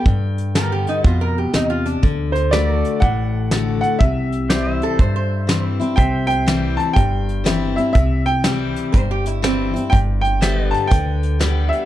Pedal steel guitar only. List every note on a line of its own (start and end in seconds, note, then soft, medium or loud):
0.00 1.99 B4 medium
0.00 1.99 D5 medium
2.53 2.78 B4 medium
2.53 4.00 D5 medium
2.78 3.99 A4 medium
4.50 5.96 C5 medium
4.50 4.75 D5 medium
4.75 5.96 E5 medium
5.98 9.88 C5 medium
5.98 9.89 E5 medium
10.42 10.62 C5 medium
10.42 10.68 E5 medium
10.62 11.85 B4 medium
10.68 11.85 D5 medium